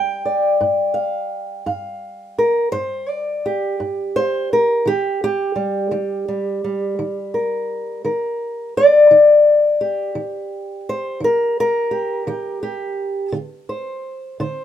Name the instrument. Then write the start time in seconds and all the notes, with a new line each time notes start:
steel-string acoustic guitar
Already playing: G2 G3 D5 G5
0.25 D5
0.61 G2
0.94 F5
1.66 G2 F5
2.38 A#4
2.72 G2 C5
3.09 D5
3.46 G4
3.80 G2
4.16 C5
4.53 A#4
4.86 D#3 G4
5.24 G4
5.56 G3
5.91 D#3 G3
6.28 G3
6.64 G3
6.99 D#3
7.34 A#4
8.05 D#3 A#4
8.77 D5
9.11 D#3
9.81 G4
10.15 D#3 C5
10.89 C5
11.20 D#3 A#4
11.60 A#4
11.91 G4
12.27 D#3 G4
12.63 G4
13.32 D3
13.69 C5
14.40 D3 C5